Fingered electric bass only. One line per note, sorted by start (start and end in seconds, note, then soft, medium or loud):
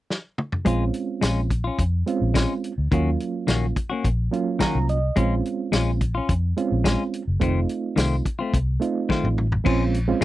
0.66 0.89 A#1 medium
1.22 1.69 A#1 medium
1.79 2.02 F2 medium
2.21 2.45 A#1 medium
2.78 2.89 D2 medium
2.92 3.15 D#2 medium
3.48 3.71 A#1 medium
4.05 4.27 A#1 medium
4.75 5.09 C2 medium
5.17 5.40 A#1 medium
5.73 6.19 A#1 medium
6.29 6.52 F2 medium
6.72 6.95 A#1 medium
7.27 7.39 F#1 medium
7.41 7.64 F1 medium
7.97 8.20 C2 medium
8.53 8.77 C2 medium
9.24 9.58 A1 medium
9.66 10.12 A#1 loud